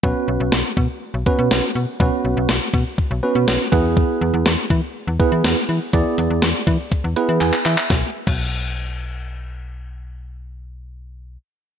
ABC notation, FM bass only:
X:1
M:4/4
L:1/16
Q:1/4=122
K:Bdor
V:1 name="FM bass" clef=bass
B,,, z B,,, B,,, B,,, z B,, z2 B,,, z B,, B,,, z B,, z | B,,, z B,,, B,,, B,,, z B,, z2 B,,, z B,, B,,, z E,,2- | E,, z E,, E,, E,, z E, z2 E,, z E, E,, z E, z | E,, z E,, E,, E,, z E, z2 E,, z E, E,, z E, z |
B,,, z2 B,,,12- B,,,- | B,,,16 |]